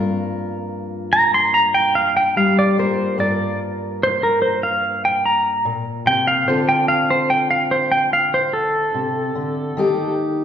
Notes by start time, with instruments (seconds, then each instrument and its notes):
Already playing: steel-string acoustic guitar G2 F3 A#3 F4 A#4
1.13 pedal steel guitar A#5
1.34 pedal steel guitar C6
1.54 pedal steel guitar A#5
1.74 pedal steel guitar G5
1.95 pedal steel guitar F5
2.17 pedal steel guitar G5
2.36 steel-string acoustic guitar G3, pedal steel guitar F5
2.59 pedal steel guitar D5
2.78 steel-string acoustic guitar A#3 F4 A#4, pedal steel guitar C5
3.18 steel-string acoustic guitar G2 A#3 F4 A#4, pedal steel guitar D5
4.03 pedal steel guitar C5
4.23 pedal steel guitar A#4
4.42 pedal steel guitar C5
4.63 pedal steel guitar F5
5.05 pedal steel guitar G5
5.26 pedal steel guitar A#5
5.65 steel-string acoustic guitar A#2
6.05 steel-string acoustic guitar C3, pedal steel guitar G5
6.27 pedal steel guitar F5
6.48 steel-string acoustic guitar D3 C4 F4 A4, pedal steel guitar C5
6.69 pedal steel guitar G5
6.88 pedal steel guitar F5
7.10 pedal steel guitar C5
7.30 pedal steel guitar G5
7.51 pedal steel guitar F5
7.71 pedal steel guitar C5
7.92 pedal steel guitar G5
8.13 pedal steel guitar F5
8.34 pedal steel guitar C5
8.53 pedal steel guitar A4
8.94 steel-string acoustic guitar C3
9.35 steel-string acoustic guitar D3
9.77 steel-string acoustic guitar D#3 A#3 D#4 G4